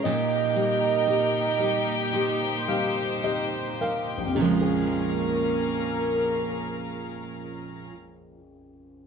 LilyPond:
<<
  \new Staff \with { instrumentName = "Soft synth lead" } { \time 4/4 \key bes \minor \tempo 4 = 51 ees''2. r4 | bes'1 | }
  \new Staff \with { instrumentName = "String section" } { \time 4/4 \key bes \minor << { <bes ees' g' g''>1 | <des' aes' bes' f''>1 | } \\ { bes'2 c''2 | r1 | } >> }
  \new Staff \with { instrumentName = "Grand piano" } { \time 4/4 \key bes \minor bes,8 g8 g'8 g8 g'8 <g f''>8 <g' ees''>8 <bes' f''>8 | <bes,, f, des bes f' aes'>1 | }
  \new Staff \with { instrumentName = "Steel-string acoustic guitar" } { \time 4/4 \key bes \minor <bes, g'>8 bes8 ees'8 g'8 ees'8 g'8 ees'8 g'8 | <bes, f aes des' aes'>1 | }
>>